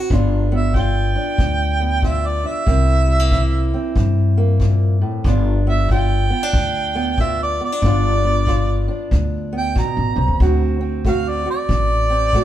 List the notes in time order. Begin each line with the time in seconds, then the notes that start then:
0.00 F#4
0.10 G1 G2 B3 D4 F4, kick
0.52 B3 E5
0.74 D3 F4 G5, kick
1.15 D4
1.38 D2 G2, kick
1.80 B3
2.02 D3 F4 E5, kick
2.27 D5
2.44 D4 E5
2.66 C2 C3 A#3 C4 E4, kick
3.07 G3
3.20 A#3
3.31 E3 E4, kick
3.74 C4
3.96 G2, kick
4.37 A#3
4.60 A#2, kick
5.02 A2
5.24 G1 G2 B3 D4 F4, kick
5.67 B3 E5
5.89 D3 F4 G5, kick
6.30 B3
6.43 D4
6.53 D2 G2, kick
6.95 B3
7.18 D3 F4 E5, kick
7.43 D5
7.61 B3
7.65 D5
7.72 D4
7.82 G1 G2 B3 D4 F4, kick
8.24 B3
8.47 D3 F4, kick
8.88 D4
9.11 D2 G2, kick
9.53 B3
9.57 G5
9.75 B2 A#5, kick
9.97 A1
10.15 B1 C3
10.28 D2
10.40 D2 D3 C4 F#4, kick
10.81 C4
11.05 A3 F#4 F5, kick
11.29 D5
11.46 F#4
11.51 D5
11.69 A1 A2, kick
12.10 C4
12.33 A3 F#4, kick